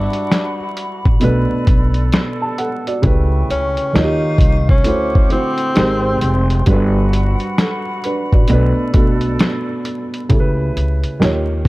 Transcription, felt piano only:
0.00 0.55 G3 medium
0.00 0.55 D4 medium
0.00 0.56 F#4 medium
0.00 0.57 A4 medium
0.00 0.57 B4 medium
1.20 1.53 B2 medium
1.20 1.54 A3 medium
1.20 1.54 D4 medium
1.20 1.55 F#4 medium
1.20 1.55 B4 loud
2.42 2.57 A5 medium
2.59 2.86 A4 medium
2.59 2.86 F#5 medium
2.88 3.31 F#4 medium
2.88 3.30 D5 medium
3.02 3.94 C#3 medium
3.02 3.94 A3 medium
3.02 3.95 E4 medium
3.02 3.95 G4 medium
3.06 3.96 B4 loud
3.93 4.71 D#3 medium
3.93 4.72 A#3 medium
3.93 4.72 F4 medium
3.93 4.03 F#4 medium
3.97 4.73 C#5 medium
4.03 4.76 G4 medium
4.84 5.17 D3 medium
4.84 5.18 A3 medium
4.84 5.18 E4 medium
4.84 5.19 F#4 medium
4.84 5.19 C5 medium
5.30 5.76 D3 medium
5.30 5.76 A3 medium
5.30 5.77 E4 medium
5.30 5.77 F#4 medium
5.34 5.77 C5 medium
5.75 6.53 G#3 medium
5.75 6.53 D#4 medium
5.75 6.54 G4 medium
5.75 6.55 A#4 medium
5.79 6.55 C5 medium
6.66 7.83 G3 medium
6.66 7.58 D4 medium
6.66 7.58 F#4 medium
6.66 7.58 A4 medium
6.66 7.59 B4 loud
7.59 8.02 A4 medium
8.05 8.32 D4 medium
8.05 8.31 B4 medium
8.33 8.50 F#4 medium
8.33 8.76 D5 medium
8.48 8.81 B2 medium
8.48 8.81 A3 medium
8.48 8.82 D4 medium
8.48 8.83 F#4 medium
8.52 8.83 B4 medium
8.93 9.79 B2 medium
8.93 9.79 A3 medium
8.93 9.80 D4 medium
8.93 9.80 F#4 medium
8.97 9.81 A4 medium
10.29 11.21 C#3 medium
10.29 11.21 A3 medium
10.29 11.22 E4 medium
10.29 11.21 G4 medium
10.33 10.40 A4 medium
10.40 11.26 B4 loud
11.20 11.68 D#3 medium
11.20 11.68 A#3 medium
11.20 11.68 F4 medium
11.20 11.68 G4 medium
11.24 11.68 C#5 loud

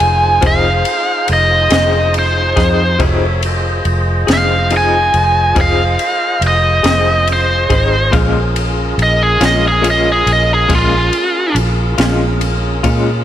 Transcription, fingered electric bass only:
0.01 0.40 F1 medium
0.43 0.82 F1 medium
1.29 1.68 F1 medium
1.71 2.53 F1 medium
2.57 2.96 F2 medium
3.00 3.81 F1 medium
3.85 4.24 F1 medium
4.29 5.10 F1 medium
5.14 5.53 F1 medium
5.57 5.96 F1 medium
6.41 6.81 F1 medium
6.84 7.66 F1 medium
7.70 8.10 G#1 medium
8.13 8.95 A#1 medium
8.98 9.37 A#1 medium
9.41 10.22 A#1 medium
10.27 10.66 A#1 medium
10.70 11.09 A#1 medium
11.55 11.94 A#1 medium
11.99 12.80 A#1 medium
12.84 13.23 A#2 loud

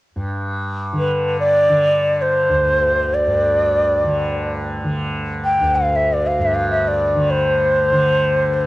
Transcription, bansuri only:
0.99 1.39 B4 medium
1.40 2.23 D5 medium
2.22 3.15 C5 medium
3.14 4.53 D5 medium
5.45 5.77 G5 medium
5.75 5.97 F5 medium
5.96 6.15 E5 medium
6.13 6.28 D5 medium
6.27 6.43 F5 medium
6.42 6.56 E5 medium
6.55 6.70 F5 medium
6.71 6.89 E5 medium
6.88 7.32 D5 medium
7.30 8.54 C5 medium
8.54 8.66 C5 medium

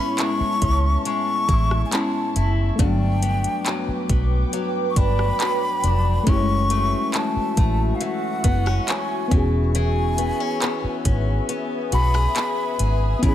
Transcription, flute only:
0.00 0.21 B5 loud
0.19 1.05 C#6 loud
1.06 1.82 C#6 loud
1.86 1.95 G#5 medium
1.93 2.53 A5 loud
2.80 4.06 G5 loud
4.90 4.99 C#6 medium
4.98 6.30 B5 loud
6.29 7.18 C#6 loud
7.16 7.97 A5 loud
7.95 8.05 F5 medium
8.03 8.92 F#5 loud
8.91 9.49 G#5 medium
9.77 11.02 G#5 loud
11.94 13.20 B5 loud
13.25 13.35 B5 loud

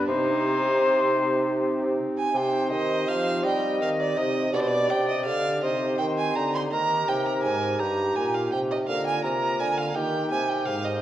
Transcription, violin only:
0.07 1.78 D#4 loud
2.17 2.37 G#5 loud
2.36 2.71 G5 loud
2.71 3.10 D#5 loud
3.08 3.45 F5 loud
3.46 3.81 G5 loud
3.82 3.89 F5 loud
4.00 4.19 D5 loud
4.17 4.53 D#5 loud
4.53 4.61 D5 loud
4.61 4.69 C5 medium
4.68 4.91 D5 loud
4.90 5.08 G5 loud
5.09 5.25 D#5 loud
5.26 5.61 F5 loud
5.63 5.97 D#5 loud
5.98 6.05 G5 loud
6.18 6.37 G#5 loud
6.35 6.53 A#5 loud
6.55 6.62 C6 loud
6.72 7.10 A#5 loud
7.08 7.28 G5 loud
7.26 7.42 A#5 loud
7.43 7.81 G#5 loud
7.80 8.17 A#5 loud
8.15 8.36 G#5 loud
8.34 8.51 F5 medium
8.52 8.59 G5 loud
8.71 8.78 D#5 medium
8.87 9.05 F5 loud
9.06 9.23 G#5 loud
9.24 9.61 A#5 loud
9.60 9.79 G#5 loud
9.78 9.97 F5 loud
9.95 10.30 G5 loud
10.31 10.50 G#5 loud
10.49 10.67 G5 loud
10.66 10.86 F5 loud
10.85 11.01 D#5 medium

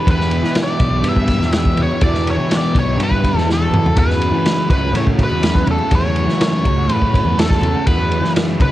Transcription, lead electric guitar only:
0.11 0.54 B4 medium
0.63 1.05 D5 medium
1.09 1.52 E5 medium
1.58 1.81 E5 loud
1.83 2.03 C#5 medium
2.04 2.28 D5 loud
2.30 2.53 C#5 medium
2.57 2.79 D5 medium
2.79 3.00 C#5 medium
3.03 3.47 B4 medium
3.53 3.99 A4 medium
3.99 4.69 B4 medium
4.70 4.93 B4 medium
4.97 5.03 C#5 medium
5.23 5.66 B4 medium
5.71 5.94 A4 medium
5.95 6.94 C#5 loud
6.94 7.43 B4 loud
7.40 7.87 A4 medium
7.87 8.32 B4 medium
8.62 8.72 B4 medium

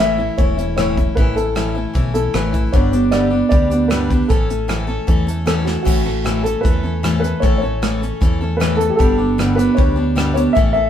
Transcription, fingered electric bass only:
0.00 0.29 A1 medium
0.39 1.07 E1 medium
1.17 1.85 A1 medium
1.96 2.29 B1 medium
2.34 2.67 A1 medium
2.74 3.42 G1 medium
3.52 4.20 D2 medium
4.30 4.98 A1 medium
5.08 5.76 E2 medium
5.86 6.54 A1 medium
6.65 7.33 E2 medium
7.43 8.11 A1 medium
8.21 8.89 E2 medium
9.00 9.68 G1 medium
9.78 10.46 D2 medium
10.57 10.90 A1 medium

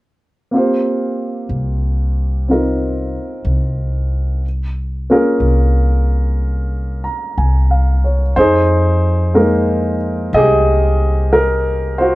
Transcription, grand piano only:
0.51 4.43 A#3 soft
0.51 2.47 C4 soft
0.51 2.49 F4 soft
0.55 4.45 G4 soft
0.55 4.45 C5 soft
2.48 4.43 C4 soft
2.48 4.44 D#4 soft
2.48 4.44 F4 soft
2.48 4.45 A#4 soft
5.10 8.36 A#3 soft
5.10 8.36 C#4 soft
5.10 8.36 F4 soft
5.10 8.36 G#4 soft
5.10 8.37 A#4 medium
7.04 7.55 A#5 soft
7.38 8.00 G#5 soft
7.71 8.21 F5 soft
8.04 8.55 C#5 soft
8.36 9.33 D#4 medium
8.36 10.29 G#4 medium
8.36 9.97 C5 medium
9.34 12.15 G#3 soft
9.34 12.15 A#3 soft
9.34 12.15 D#4 soft
9.34 11.31 A#4 medium
10.34 12.15 G4 medium
10.34 12.15 G#4 medium
10.34 11.34 D#5 medium
11.33 11.99 A#4 medium
11.98 12.15 F4 soft
11.98 12.15 F#4 soft
11.98 12.15 C5 medium

